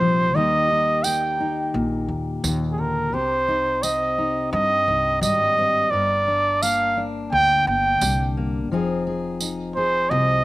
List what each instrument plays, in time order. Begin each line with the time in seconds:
Already playing: upright bass A#1, steel-string acoustic guitar C3 D#4, trumpet C5
0.00 steel-string acoustic guitar F3
0.34 upright bass D#2, steel-string acoustic guitar D#3 G3 A#3 D#4 G4, trumpet D#5
0.70 steel-string acoustic guitar D#4
1.04 steel-string acoustic guitar A#3, trumpet G5, tambourine
1.40 steel-string acoustic guitar D#4
1.74 upright bass A#1, steel-string acoustic guitar A#2
2.08 upright bass D#2
2.44 upright bass D#2, steel-string acoustic guitar D#3, tambourine
2.72 trumpet G#4
2.78 steel-string acoustic guitar D3, trumpet A#4
3.12 upright bass C2, steel-string acoustic guitar C3 G4, trumpet C5
3.48 steel-string acoustic guitar D#4
3.83 steel-string acoustic guitar C4, trumpet D#5, tambourine
4.18 steel-string acoustic guitar D#4
4.53 upright bass G2, steel-string acoustic guitar G2, trumpet D#5
4.88 upright bass C2, steel-string acoustic guitar D#4
5.21 upright bass G#1, steel-string acoustic guitar G3, trumpet D#5, tambourine
5.58 steel-string acoustic guitar C4
5.91 upright bass G1, steel-string acoustic guitar G2 A#4, trumpet D5
6.28 steel-string acoustic guitar D4
6.62 steel-string acoustic guitar A#3, trumpet F5, tambourine
6.97 steel-string acoustic guitar D4
7.32 upright bass D2, steel-string acoustic guitar D3, trumpet G5
7.67 upright bass G1, steel-string acoustic guitar D4, trumpet G5
8.01 upright bass C2, steel-string acoustic guitar G3, tambourine
8.37 steel-string acoustic guitar A#3
8.71 upright bass F1, steel-string acoustic guitar F3 C4 D#4 G#4
9.07 steel-string acoustic guitar G#4
9.40 steel-string acoustic guitar D#4, tambourine
9.76 steel-string acoustic guitar G#4, trumpet C5
10.10 upright bass C2, steel-string acoustic guitar C3, trumpet D#5